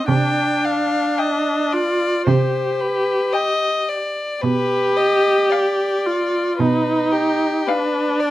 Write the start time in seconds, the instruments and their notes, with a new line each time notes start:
0.08 cello C3, viola D4, violin G5
0.65 violin F5
1.18 violin D#5 G5
1.73 viola F4, violin D5
2.27 cello C3, viola G4, violin C5
2.80 violin B4
3.33 violin D#5 G5
3.89 violin D5
4.41 cello B2, viola G4, violin B4
4.97 violin D#5
5.49 violin D5 F5
6.06 viola F4
6.58 cello B2, viola D#4, violin B4
7.12 violin G4
7.66 viola D4, violin B4 F5
8.20 violin D5